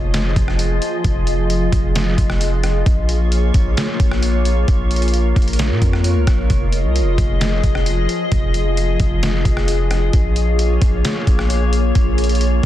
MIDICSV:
0, 0, Header, 1, 4, 480
1, 0, Start_track
1, 0, Key_signature, -4, "minor"
1, 0, Tempo, 454545
1, 1104, Time_signature, 4, 2, 24, 8
1, 13367, End_track
2, 0, Start_track
2, 0, Title_t, "Ambient pad"
2, 0, Program_c, 0, 92
2, 0, Note_on_c, 0, 53, 83
2, 0, Note_on_c, 0, 65, 76
2, 0, Note_on_c, 0, 68, 78
2, 0, Note_on_c, 0, 75, 92
2, 2984, Note_off_c, 0, 53, 0
2, 2984, Note_off_c, 0, 75, 0
2, 2985, Note_off_c, 0, 65, 0
2, 3024, Note_on_c, 0, 58, 84
2, 3024, Note_on_c, 0, 65, 76
2, 3024, Note_on_c, 0, 73, 92
2, 4900, Note_off_c, 0, 68, 0
2, 4941, Note_on_c, 0, 70, 77
2, 6825, Note_off_c, 0, 58, 0
2, 6825, Note_off_c, 0, 73, 0
2, 6843, Note_off_c, 0, 70, 0
2, 6860, Note_on_c, 0, 68, 75
2, 6861, Note_on_c, 0, 53, 83
2, 6862, Note_on_c, 0, 75, 92
2, 10664, Note_off_c, 0, 53, 0
2, 10664, Note_off_c, 0, 75, 0
2, 10705, Note_on_c, 0, 58, 86
2, 10705, Note_on_c, 0, 73, 88
2, 13367, Note_off_c, 0, 58, 0
2, 13367, Note_off_c, 0, 65, 0
2, 13367, Note_off_c, 0, 68, 0
2, 13367, Note_off_c, 0, 73, 0
2, 13367, End_track
3, 0, Start_track
3, 0, Title_t, "808-style bass"
3, 0, Program_c, 1, 38
3, 0, Note_on_c, 1, 29, 111
3, 363, Note_off_c, 1, 29, 0
3, 382, Note_on_c, 1, 29, 108
3, 843, Note_off_c, 1, 29, 0
3, 1102, Note_on_c, 1, 29, 110
3, 1794, Note_off_c, 1, 29, 0
3, 1821, Note_on_c, 1, 29, 111
3, 2283, Note_off_c, 1, 29, 0
3, 2302, Note_on_c, 1, 29, 106
3, 2994, Note_off_c, 1, 29, 0
3, 3023, Note_on_c, 1, 34, 109
3, 3714, Note_off_c, 1, 34, 0
3, 3741, Note_on_c, 1, 34, 112
3, 3972, Note_off_c, 1, 34, 0
3, 4222, Note_on_c, 1, 34, 104
3, 4914, Note_off_c, 1, 34, 0
3, 4944, Note_on_c, 1, 34, 101
3, 5635, Note_off_c, 1, 34, 0
3, 5663, Note_on_c, 1, 34, 112
3, 6024, Note_on_c, 1, 46, 101
3, 6040, Note_off_c, 1, 34, 0
3, 6138, Note_off_c, 1, 46, 0
3, 6143, Note_on_c, 1, 41, 115
3, 6505, Note_on_c, 1, 37, 106
3, 6521, Note_off_c, 1, 41, 0
3, 6618, Note_off_c, 1, 37, 0
3, 6624, Note_on_c, 1, 34, 102
3, 6854, Note_off_c, 1, 34, 0
3, 6863, Note_on_c, 1, 29, 101
3, 7224, Note_on_c, 1, 36, 98
3, 7240, Note_off_c, 1, 29, 0
3, 7404, Note_on_c, 1, 29, 101
3, 7420, Note_off_c, 1, 36, 0
3, 7575, Note_off_c, 1, 29, 0
3, 7584, Note_on_c, 1, 29, 110
3, 8044, Note_off_c, 1, 29, 0
3, 8064, Note_on_c, 1, 29, 110
3, 8524, Note_off_c, 1, 29, 0
3, 8783, Note_on_c, 1, 29, 102
3, 9474, Note_off_c, 1, 29, 0
3, 9501, Note_on_c, 1, 29, 113
3, 9963, Note_off_c, 1, 29, 0
3, 9982, Note_on_c, 1, 29, 104
3, 10674, Note_off_c, 1, 29, 0
3, 10702, Note_on_c, 1, 34, 107
3, 11394, Note_off_c, 1, 34, 0
3, 11422, Note_on_c, 1, 34, 110
3, 11653, Note_off_c, 1, 34, 0
3, 11902, Note_on_c, 1, 34, 109
3, 12594, Note_off_c, 1, 34, 0
3, 12624, Note_on_c, 1, 34, 106
3, 13315, Note_off_c, 1, 34, 0
3, 13367, End_track
4, 0, Start_track
4, 0, Title_t, "Drums"
4, 146, Note_on_c, 9, 42, 85
4, 150, Note_on_c, 9, 38, 117
4, 251, Note_off_c, 9, 42, 0
4, 255, Note_off_c, 9, 38, 0
4, 382, Note_on_c, 9, 36, 116
4, 383, Note_on_c, 9, 42, 80
4, 488, Note_off_c, 9, 36, 0
4, 489, Note_off_c, 9, 42, 0
4, 507, Note_on_c, 9, 37, 99
4, 613, Note_off_c, 9, 37, 0
4, 623, Note_on_c, 9, 42, 98
4, 729, Note_off_c, 9, 42, 0
4, 864, Note_on_c, 9, 42, 75
4, 970, Note_off_c, 9, 42, 0
4, 1103, Note_on_c, 9, 36, 117
4, 1103, Note_on_c, 9, 42, 77
4, 1208, Note_off_c, 9, 36, 0
4, 1209, Note_off_c, 9, 42, 0
4, 1341, Note_on_c, 9, 42, 70
4, 1446, Note_off_c, 9, 42, 0
4, 1583, Note_on_c, 9, 42, 77
4, 1689, Note_off_c, 9, 42, 0
4, 1821, Note_on_c, 9, 36, 102
4, 1822, Note_on_c, 9, 42, 75
4, 1927, Note_off_c, 9, 36, 0
4, 1927, Note_off_c, 9, 42, 0
4, 2064, Note_on_c, 9, 42, 84
4, 2068, Note_on_c, 9, 38, 117
4, 2170, Note_off_c, 9, 42, 0
4, 2174, Note_off_c, 9, 38, 0
4, 2302, Note_on_c, 9, 36, 107
4, 2302, Note_on_c, 9, 42, 80
4, 2408, Note_off_c, 9, 36, 0
4, 2408, Note_off_c, 9, 42, 0
4, 2425, Note_on_c, 9, 37, 97
4, 2531, Note_off_c, 9, 37, 0
4, 2543, Note_on_c, 9, 42, 95
4, 2648, Note_off_c, 9, 42, 0
4, 2782, Note_on_c, 9, 42, 76
4, 2785, Note_on_c, 9, 37, 85
4, 2888, Note_off_c, 9, 42, 0
4, 2890, Note_off_c, 9, 37, 0
4, 3023, Note_on_c, 9, 36, 114
4, 3023, Note_on_c, 9, 42, 75
4, 3128, Note_off_c, 9, 36, 0
4, 3128, Note_off_c, 9, 42, 0
4, 3261, Note_on_c, 9, 42, 71
4, 3366, Note_off_c, 9, 42, 0
4, 3504, Note_on_c, 9, 42, 73
4, 3610, Note_off_c, 9, 42, 0
4, 3741, Note_on_c, 9, 42, 75
4, 3742, Note_on_c, 9, 36, 102
4, 3847, Note_off_c, 9, 36, 0
4, 3847, Note_off_c, 9, 42, 0
4, 3984, Note_on_c, 9, 42, 87
4, 3988, Note_on_c, 9, 38, 118
4, 4090, Note_off_c, 9, 42, 0
4, 4094, Note_off_c, 9, 38, 0
4, 4222, Note_on_c, 9, 36, 113
4, 4222, Note_on_c, 9, 42, 77
4, 4328, Note_off_c, 9, 36, 0
4, 4328, Note_off_c, 9, 42, 0
4, 4345, Note_on_c, 9, 37, 97
4, 4451, Note_off_c, 9, 37, 0
4, 4462, Note_on_c, 9, 42, 95
4, 4568, Note_off_c, 9, 42, 0
4, 4703, Note_on_c, 9, 42, 77
4, 4809, Note_off_c, 9, 42, 0
4, 4942, Note_on_c, 9, 42, 71
4, 4943, Note_on_c, 9, 36, 115
4, 5048, Note_off_c, 9, 42, 0
4, 5049, Note_off_c, 9, 36, 0
4, 5182, Note_on_c, 9, 42, 60
4, 5241, Note_off_c, 9, 42, 0
4, 5241, Note_on_c, 9, 42, 59
4, 5301, Note_off_c, 9, 42, 0
4, 5301, Note_on_c, 9, 42, 55
4, 5363, Note_off_c, 9, 42, 0
4, 5363, Note_on_c, 9, 42, 55
4, 5423, Note_off_c, 9, 42, 0
4, 5423, Note_on_c, 9, 42, 70
4, 5529, Note_off_c, 9, 42, 0
4, 5662, Note_on_c, 9, 36, 99
4, 5664, Note_on_c, 9, 42, 49
4, 5723, Note_off_c, 9, 42, 0
4, 5723, Note_on_c, 9, 42, 56
4, 5768, Note_off_c, 9, 36, 0
4, 5783, Note_off_c, 9, 42, 0
4, 5783, Note_on_c, 9, 42, 70
4, 5842, Note_off_c, 9, 42, 0
4, 5842, Note_on_c, 9, 42, 82
4, 5904, Note_off_c, 9, 42, 0
4, 5904, Note_on_c, 9, 42, 86
4, 5908, Note_on_c, 9, 38, 127
4, 6010, Note_off_c, 9, 42, 0
4, 6014, Note_off_c, 9, 38, 0
4, 6143, Note_on_c, 9, 36, 113
4, 6143, Note_on_c, 9, 42, 81
4, 6248, Note_off_c, 9, 36, 0
4, 6248, Note_off_c, 9, 42, 0
4, 6266, Note_on_c, 9, 37, 98
4, 6372, Note_off_c, 9, 37, 0
4, 6381, Note_on_c, 9, 42, 94
4, 6487, Note_off_c, 9, 42, 0
4, 6623, Note_on_c, 9, 42, 74
4, 6624, Note_on_c, 9, 36, 94
4, 6625, Note_on_c, 9, 37, 91
4, 6728, Note_off_c, 9, 42, 0
4, 6729, Note_off_c, 9, 36, 0
4, 6731, Note_off_c, 9, 37, 0
4, 6863, Note_on_c, 9, 42, 71
4, 6864, Note_on_c, 9, 36, 111
4, 6969, Note_off_c, 9, 42, 0
4, 6970, Note_off_c, 9, 36, 0
4, 7102, Note_on_c, 9, 42, 69
4, 7207, Note_off_c, 9, 42, 0
4, 7346, Note_on_c, 9, 42, 77
4, 7452, Note_off_c, 9, 42, 0
4, 7583, Note_on_c, 9, 36, 105
4, 7584, Note_on_c, 9, 42, 78
4, 7689, Note_off_c, 9, 36, 0
4, 7689, Note_off_c, 9, 42, 0
4, 7825, Note_on_c, 9, 42, 85
4, 7829, Note_on_c, 9, 38, 126
4, 7930, Note_off_c, 9, 42, 0
4, 7934, Note_off_c, 9, 38, 0
4, 8063, Note_on_c, 9, 36, 112
4, 8063, Note_on_c, 9, 42, 79
4, 8168, Note_off_c, 9, 36, 0
4, 8169, Note_off_c, 9, 42, 0
4, 8186, Note_on_c, 9, 37, 99
4, 8291, Note_off_c, 9, 37, 0
4, 8303, Note_on_c, 9, 42, 95
4, 8408, Note_off_c, 9, 42, 0
4, 8543, Note_on_c, 9, 42, 77
4, 8649, Note_off_c, 9, 42, 0
4, 8782, Note_on_c, 9, 42, 71
4, 8783, Note_on_c, 9, 36, 116
4, 8888, Note_off_c, 9, 42, 0
4, 8889, Note_off_c, 9, 36, 0
4, 9021, Note_on_c, 9, 42, 70
4, 9126, Note_off_c, 9, 42, 0
4, 9264, Note_on_c, 9, 42, 74
4, 9370, Note_off_c, 9, 42, 0
4, 9500, Note_on_c, 9, 42, 76
4, 9501, Note_on_c, 9, 36, 102
4, 9605, Note_off_c, 9, 42, 0
4, 9607, Note_off_c, 9, 36, 0
4, 9744, Note_on_c, 9, 42, 87
4, 9748, Note_on_c, 9, 38, 126
4, 9850, Note_off_c, 9, 42, 0
4, 9854, Note_off_c, 9, 38, 0
4, 9982, Note_on_c, 9, 36, 109
4, 9982, Note_on_c, 9, 42, 78
4, 10087, Note_off_c, 9, 36, 0
4, 10088, Note_off_c, 9, 42, 0
4, 10104, Note_on_c, 9, 37, 94
4, 10210, Note_off_c, 9, 37, 0
4, 10222, Note_on_c, 9, 42, 97
4, 10327, Note_off_c, 9, 42, 0
4, 10461, Note_on_c, 9, 42, 73
4, 10464, Note_on_c, 9, 37, 88
4, 10567, Note_off_c, 9, 42, 0
4, 10570, Note_off_c, 9, 37, 0
4, 10701, Note_on_c, 9, 42, 71
4, 10702, Note_on_c, 9, 36, 109
4, 10806, Note_off_c, 9, 42, 0
4, 10808, Note_off_c, 9, 36, 0
4, 10940, Note_on_c, 9, 42, 69
4, 11046, Note_off_c, 9, 42, 0
4, 11183, Note_on_c, 9, 42, 71
4, 11288, Note_off_c, 9, 42, 0
4, 11421, Note_on_c, 9, 42, 76
4, 11422, Note_on_c, 9, 36, 99
4, 11527, Note_off_c, 9, 36, 0
4, 11527, Note_off_c, 9, 42, 0
4, 11665, Note_on_c, 9, 42, 88
4, 11669, Note_on_c, 9, 38, 118
4, 11770, Note_off_c, 9, 42, 0
4, 11774, Note_off_c, 9, 38, 0
4, 11903, Note_on_c, 9, 36, 116
4, 11903, Note_on_c, 9, 42, 77
4, 12008, Note_off_c, 9, 36, 0
4, 12009, Note_off_c, 9, 42, 0
4, 12026, Note_on_c, 9, 37, 99
4, 12132, Note_off_c, 9, 37, 0
4, 12144, Note_on_c, 9, 42, 96
4, 12249, Note_off_c, 9, 42, 0
4, 12384, Note_on_c, 9, 42, 75
4, 12490, Note_off_c, 9, 42, 0
4, 12622, Note_on_c, 9, 42, 75
4, 12624, Note_on_c, 9, 36, 115
4, 12728, Note_off_c, 9, 42, 0
4, 12729, Note_off_c, 9, 36, 0
4, 12862, Note_on_c, 9, 42, 58
4, 12923, Note_off_c, 9, 42, 0
4, 12923, Note_on_c, 9, 42, 58
4, 12982, Note_off_c, 9, 42, 0
4, 12982, Note_on_c, 9, 42, 55
4, 13042, Note_off_c, 9, 42, 0
4, 13042, Note_on_c, 9, 42, 57
4, 13103, Note_off_c, 9, 42, 0
4, 13103, Note_on_c, 9, 42, 73
4, 13209, Note_off_c, 9, 42, 0
4, 13367, End_track
0, 0, End_of_file